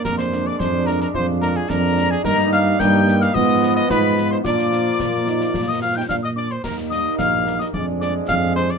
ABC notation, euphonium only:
X:1
M:2/4
L:1/16
Q:1/4=109
K:Bbmix
V:1 name="Euphonium"
B,4 D4 | F4 D4 | E4 B,4 | _C4 E4 |
D4 B,2 E2 | F3 E D2 D2 | E8 | D8 |]